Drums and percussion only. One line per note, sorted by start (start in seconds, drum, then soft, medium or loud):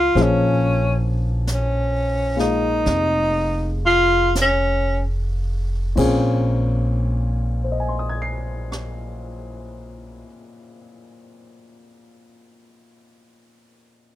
0.17 brush sweep soft
0.17 snare soft
1.47 brush sweep soft
1.47 snare soft
1.47 hi-hat pedal medium
2.39 snare soft
2.86 brush sweep soft
2.86 snare soft
4.35 brush sweep soft
4.35 snare soft
4.35 hi-hat pedal medium
5.97 kick soft
5.97 crash medium
8.72 cross-stick medium